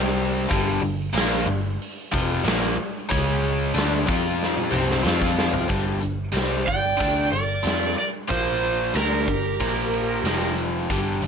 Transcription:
0.00 0.46 C2 medium
0.00 0.49 C3 medium
0.00 0.48 G3 medium
0.00 0.49 C4 loud
0.48 0.80 G1 medium
0.48 0.81 G2 medium
0.48 0.81 D3 medium
0.48 0.81 G3 loud
0.48 kick loud
0.48 open hi-hat medium
0.82 1.12 G1 medium
0.82 1.08 G2 medium
0.82 1.09 D3 medium
1.14 1.45 A#1 loud
1.14 1.46 A#2 medium
1.14 1.47 F3 medium
1.14 1.47 A#3 loud
1.14 snare loud
1.14 open hi-hat medium
1.46 1.77 G1 medium
1.46 1.74 G2 medium
1.46 1.74 D3 medium
1.82 open hi-hat medium
2.12 2.43 F1 medium
2.12 2.44 F2 medium
2.12 2.43 C3 medium
2.12 2.43 F3 loud
2.12 kick loud
2.43 2.75 A#1 medium
2.43 2.76 A#2 medium
2.43 2.76 F3 loud
2.43 2.76 A#3 loud
2.43 open hi-hat medium
2.48 snare loud
2.77 muted overdriven electric guitar stroke medium
2.77 muted picked electric bass stroke soft
3.09 3.71 C#2 medium
3.09 3.73 C#3 loud
3.09 3.74 G#3 loud
3.09 3.74 C#4 loud
3.09 kick loud
3.09 open hi-hat medium
3.74 4.05 D2 loud
3.74 4.06 D3 medium
3.74 4.06 A3 loud
3.74 4.06 D4 medium
3.74 open hi-hat medium
3.78 snare loud
4.07 4.69 F2 medium
4.07 4.71 F3 medium
4.07 4.71 C4 medium
4.07 4.72 F4 medium
4.07 kick medium
4.43 snare medium
4.57 high tom soft
4.71 5.02 C2 medium
4.71 5.03 C3 medium
4.71 5.03 G3 medium
4.71 5.03 C4 medium
4.71 mid tom medium
4.91 snare medium
5.03 5.66 F2 loud
5.03 5.68 F3 medium
5.03 5.68 C4 medium
5.03 5.69 F4 loud
5.03 snare loud
5.21 kick medium
5.39 snare medium
5.54 floor tom medium
5.68 6.00 G1 medium
5.68 5.99 G2 medium
5.68 6.00 D3 medium
5.68 6.01 G3 medium
5.68 kick loud
5.68 closed hi-hat medium
6.01 6.33 G1 medium
6.01 6.27 G2 medium
6.01 6.28 D3 medium
6.01 closed hi-hat medium
6.33 6.64 C2 medium
6.33 6.65 C3 medium
6.33 6.65 G3 medium
6.33 6.65 C4 medium
6.33 closed hi-hat medium
6.37 snare medium
6.65 6.98 G1 medium
6.65 6.92 G2 soft
6.65 6.92 D3 medium
6.65 7.27 D5 medium
6.65 7.28 G5 medium
6.65 kick medium
6.65 closed hi-hat medium
6.97 7.30 D2 medium
6.97 7.30 D3 medium
6.97 7.30 A3 medium
6.97 7.30 D4 medium
6.97 kick loud
6.97 closed hi-hat medium
7.31 7.62 G1 medium
7.31 7.58 G2 medium
7.31 7.58 D3 medium
7.31 7.94 A#4 medium
7.31 7.97 D5 medium
7.31 closed hi-hat medium
7.63 7.95 F2 medium
7.63 7.95 F3 medium
7.63 7.95 C4 medium
7.63 7.96 F4 medium
7.63 closed hi-hat medium
7.67 snare loud
7.98 8.08 A#4 medium
7.98 8.07 D5 medium
7.98 closed hi-hat medium
8.28 8.91 A#1 medium
8.28 8.93 A#2 medium
8.28 8.93 F3 medium
8.28 8.93 A#3 medium
8.28 8.91 F4 medium
8.28 8.96 C5 medium
8.28 kick loud
8.28 closed hi-hat medium
8.63 closed hi-hat medium
8.93 9.25 D2 medium
8.93 9.25 D3 medium
8.93 9.26 A3 medium
8.93 9.26 D4 medium
8.93 10.53 G4 medium
8.93 10.54 A#4 medium
8.93 snare loud
8.93 closed hi-hat medium
9.28 9.58 G1 medium
9.28 9.53 G2 soft
9.28 9.54 D3 medium
9.28 kick medium
9.28 closed hi-hat medium
9.60 10.21 A#1 medium
9.60 10.24 A#2 medium
9.60 10.24 F3 medium
9.60 10.24 A#3 medium
9.60 kick medium
9.60 closed hi-hat medium
9.93 closed hi-hat medium
10.24 10.85 F1 medium
10.24 10.89 F2 medium
10.24 10.89 C3 medium
10.24 10.90 F3 loud
10.24 snare loud
10.24 closed hi-hat medium
10.58 closed hi-hat soft
10.90 11.20 G1 medium
10.90 11.21 G2 medium
10.90 11.21 D3 medium
10.90 11.22 G3 medium
10.90 kick loud
10.90 closed hi-hat medium
11.22 11.27 G1 medium
11.22 11.27 G2 medium
11.22 11.27 D3 medium
11.22 closed hi-hat medium

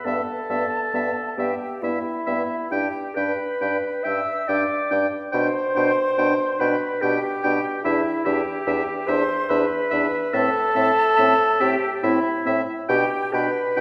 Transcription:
0.05 0.21 G2 soft
0.05 0.21 B3 soft
0.05 1.37 A4 medium
0.05 0.23 E5 soft
0.05 1.39 A5 medium
0.49 0.65 G2 soft
0.49 0.66 B3 soft
0.49 0.66 E5 soft
0.94 1.10 G2 soft
0.94 1.10 B3 soft
0.94 1.11 E5 soft
1.37 1.54 G2 soft
1.37 1.54 B3 soft
1.37 1.83 G4 medium
1.37 1.55 E5 soft
1.37 1.84 G5 soft
1.82 1.99 G2 soft
1.82 1.99 B3 soft
1.82 2.70 E4 medium
1.82 2.73 E5 medium
1.82 1.99 E5 soft
2.27 2.43 G2 soft
2.27 2.43 B3 soft
2.27 2.43 E5 soft
2.70 2.88 G2 medium
2.70 2.88 D4 soft
2.70 3.16 G4 medium
2.70 3.15 G5 medium
2.70 2.88 G5 soft
3.15 3.32 G2 soft
3.15 3.33 D4 soft
3.15 4.05 B4 medium
3.15 3.32 G5 soft
3.15 3.77 B5 medium
3.61 3.77 G2 soft
3.61 3.77 D4 soft
3.61 3.77 G5 soft
4.04 4.22 G2 soft
4.04 4.21 D4 soft
4.04 4.49 E5 medium
4.04 4.20 G5 soft
4.04 4.51 E6 medium
4.48 4.65 G2 medium
4.48 4.65 D4 soft
4.48 5.05 D5 medium
4.48 4.64 G5 soft
4.48 5.06 D6 medium
4.91 5.08 G2 soft
4.91 5.07 D4 soft
4.91 5.07 G5 soft
5.32 5.50 B2 medium
5.32 5.50 D4 soft
5.32 6.61 C5 medium
5.32 5.48 G5 medium
5.32 6.61 C6 medium
5.75 5.93 B2 medium
5.75 5.91 D4 soft
5.75 5.92 G5 soft
6.18 6.34 B2 medium
6.18 6.34 D4 soft
6.18 6.34 G5 soft
6.59 6.77 B2 medium
6.59 6.76 D4 soft
6.59 7.03 B4 medium
6.59 6.76 G5 soft
6.59 7.01 B5 medium
7.02 7.19 B2 medium
7.02 7.19 D4 medium
7.02 7.84 G4 medium
7.02 7.83 G5 medium
7.02 7.18 G5 medium
7.44 7.61 B2 medium
7.44 7.60 D4 medium
7.44 7.60 G5 medium
7.84 8.01 E2 medium
7.84 8.01 D4 medium
7.84 8.27 E4 medium
7.84 8.25 E5 medium
7.84 8.01 E5 medium
8.25 8.42 E2 medium
8.25 8.43 D4 medium
8.25 9.09 G4 medium
8.25 8.41 E5 soft
8.25 9.11 G5 medium
8.67 8.83 E2 medium
8.67 8.83 D4 medium
8.67 8.83 E5 medium
9.08 9.24 E2 medium
9.08 9.24 D4 medium
9.08 9.51 C5 medium
9.08 9.24 E5 medium
9.08 9.51 C6 medium
9.49 9.66 E2 medium
9.49 9.66 D4 medium
9.49 10.35 B4 medium
9.49 9.66 E5 medium
9.49 10.34 B5 medium
9.90 10.08 E2 medium
9.90 10.08 D4 medium
9.90 10.06 E5 medium
10.33 10.50 A2 medium
10.33 10.49 C4 medium
10.33 11.63 A4 loud
10.33 10.49 E5 medium
10.33 11.62 A5 medium
10.75 10.92 A2 medium
10.75 10.91 C4 medium
10.75 10.92 E5 medium
11.17 11.35 A2 medium
11.17 11.34 C4 medium
11.17 11.33 E5 medium
11.60 11.77 A2 medium
11.60 11.76 C4 medium
11.60 11.91 G4 medium
11.60 11.76 E5 medium
11.60 12.06 G5 medium
12.03 12.20 A2 medium
12.03 12.20 C4 medium
12.03 12.60 E4 medium
12.03 12.19 E5 medium
12.03 12.62 E5 medium
12.46 12.63 A2 medium
12.46 12.62 C4 medium
12.46 12.62 E5 medium
12.89 13.05 B2 medium
12.89 13.05 D4 medium
12.89 13.34 G4 medium
12.89 13.05 G5 medium
12.89 13.36 G5 medium
13.33 13.49 B2 medium
13.33 13.49 D4 medium
13.33 13.81 B4 medium
13.33 13.50 G5 medium
13.33 13.81 B5 medium
13.76 13.81 B2 medium
13.76 13.81 D4 medium
13.76 13.81 G5 medium

